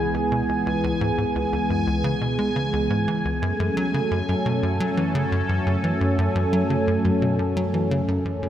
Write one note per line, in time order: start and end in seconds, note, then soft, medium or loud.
0.00 3.39 C#2 medium
0.00 3.38 E3 medium
0.00 3.38 G#3 medium
0.00 3.39 B3 medium
0.00 3.38 G#4 loud
0.00 8.49 G#5 medium
0.14 0.25 C#2 medium
0.32 0.43 B2 medium
0.49 0.65 C#2 medium
0.66 0.77 C#2 loud
0.84 0.95 C#2 loud
1.01 1.12 G#2 medium
1.18 1.25 G#2 medium
1.35 1.46 C#2 medium
1.53 1.59 C#2 medium
1.70 1.86 F#2 medium
1.87 2.03 C#2 medium
2.04 2.15 C#3 loud
2.21 2.38 B2 medium
2.39 2.50 G#3 medium
2.56 2.72 C#3 medium
2.73 2.90 C#2 medium
2.90 3.07 G#2 medium
3.08 3.24 E3 medium
3.25 3.41 C#2 medium
3.42 3.53 F#2 loud
3.42 8.49 F#2 medium
3.42 8.49 F#3 medium
3.42 8.49 A3 medium
3.42 8.49 C#4 medium
3.42 8.49 A4 loud
3.60 3.71 F#2 loud
3.77 3.88 F#3 loud
3.94 4.01 C#3 medium
4.11 4.22 F#2 medium
4.29 4.35 F#2 medium
4.46 4.62 B2 medium
4.63 4.79 F#2 medium
4.80 4.91 F#3 loud
4.97 5.14 E3 medium
5.15 5.26 C#3 loud
5.32 5.43 F#2 medium
5.49 5.60 F#2 medium
5.67 5.77 F#2 medium
5.84 5.95 E3 medium
6.01 6.17 F#2 medium
6.18 6.29 F#2 loud
6.35 6.46 F#2 loud
6.53 6.64 F#3 medium
6.70 6.77 C#3 medium
6.88 6.98 F#2 medium
7.05 7.11 F#2 medium
7.22 7.38 B2 medium
7.39 7.55 F#2 medium
7.57 7.67 F#3 loud
7.74 7.90 E3 medium
7.91 8.02 C#3 loud
8.08 8.19 F#2 medium
8.25 8.36 F#2 medium
8.43 8.49 F#2 medium